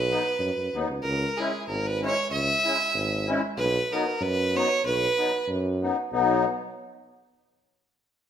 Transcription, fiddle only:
0.00 0.74 B4 loud
1.03 1.39 A#4 medium
1.37 1.67 G#4 medium
1.68 1.88 A#4 medium
1.87 2.03 B4 medium
2.06 2.31 C#5 loud
2.32 3.25 E5 loud
3.58 3.94 B4 loud
3.93 4.24 A#4 medium
4.22 4.58 B4 loud
4.57 4.85 C#5 loud
4.86 5.45 B4 loud

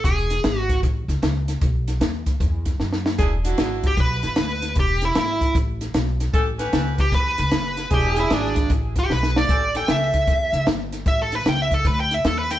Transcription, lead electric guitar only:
0.05 0.59 G#4 medium
0.59 0.79 F#4 medium
3.87 3.99 G4 medium
4.00 4.75 B4 medium
4.80 5.03 G4 medium
5.05 5.17 E4 medium
5.19 5.56 E4 medium
7.00 7.13 G4 medium
7.15 7.90 B4 medium
7.94 8.18 G4 loud
8.19 8.33 E4 medium
8.33 8.70 D4 loud
8.99 9.11 G4 medium
9.12 9.36 B4 medium
9.37 9.74 D5 medium
9.77 9.89 G5 medium
9.91 10.66 E5 loud
11.08 11.20 E5 loud
11.22 11.35 A4 medium
11.35 11.46 B4 medium
11.49 11.60 G5 medium
11.62 11.73 E5 medium
11.74 11.87 A4 medium
11.87 11.99 B4 medium
12.00 12.14 G5 medium
12.14 12.25 E5 medium
12.27 12.38 A4 medium
12.39 12.51 B4 medium
12.51 12.59 G5 medium

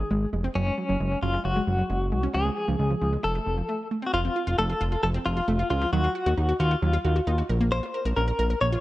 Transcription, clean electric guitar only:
0.00 0.29 G#4 medium
0.55 1.19 C#4 medium
1.23 1.45 F4 medium
1.45 2.34 F#4 medium
2.34 3.20 G#4 loud
3.24 3.87 A4 medium
4.06 4.13 F#4 medium
4.14 4.58 F4 loud
4.59 5.02 A4 loud
5.03 5.09 A4 loud
5.26 5.69 F4 medium
5.70 5.92 F4 medium
5.93 6.56 F#4 loud
6.60 7.45 F4 medium
7.72 8.16 C5 loud
8.16 8.61 A#4 loud
8.61 8.80 C#5 loud

